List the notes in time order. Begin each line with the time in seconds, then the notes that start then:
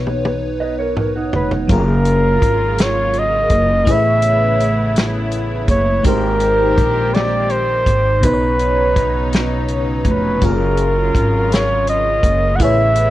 Already playing: B1 B2 B3 D#4 B4 C#5
0.07 high tom
0.25 high tom
0.60 B4 D#5
0.79 A#4 C#5
0.97 F#4 A#4, mid tom
1.16 D#4 F#4
1.33 F1 B4, floor tom
1.51 floor tom
1.68 F#1 C#3 F#3 A#3 C#4 F4, kick, closed hi-hat
1.72 G#4 A#4
2.05 closed hi-hat
2.42 G#1, kick, closed hi-hat
2.78 snare, closed hi-hat
2.83 C#5
3.13 closed hi-hat
3.19 D#5
3.50 F#1, kick, closed hi-hat
3.85 A1 A3 B3 E4 G#4, kick, closed hi-hat
3.89 A3 E4 B4 C#5 E5
4.22 closed hi-hat
4.60 closed hi-hat
4.96 snare, closed hi-hat
5.32 closed hi-hat
5.68 F#1 C#5, kick, closed hi-hat
6.03 G#1 D#3 G#3 A#3 C4 D#4 G4 A#4, kick, closed hi-hat
6.08 A#4 C5
6.40 closed hi-hat
6.78 A#1, kick, closed hi-hat
7.14 D5, snare, closed hi-hat
7.50 C5, closed hi-hat
7.86 G#1, kick, closed hi-hat
8.21 B1 B2 C#3 F#3 B3 C#4 D#4 B4, kick, closed hi-hat
8.25 B4 C5
8.33 C#5
8.59 closed hi-hat
8.96 kick, closed hi-hat
9.33 snare, closed hi-hat
9.68 closed hi-hat
10.05 F1, kick, closed hi-hat
10.10 B4
10.41 F#1 F#3 G#3 C#4 F4 G#4, kick, closed hi-hat
10.45 A#4
10.77 closed hi-hat
11.15 G#1, kick, closed hi-hat
11.52 C#5, snare, closed hi-hat
11.87 D#5, closed hi-hat
12.23 F#1, kick, closed hi-hat
12.56 A3 E4 F#5, closed hi-hat
12.60 A1 E3 B3 E4 G#4 B4 E5, kick
12.64 C#5
12.96 closed hi-hat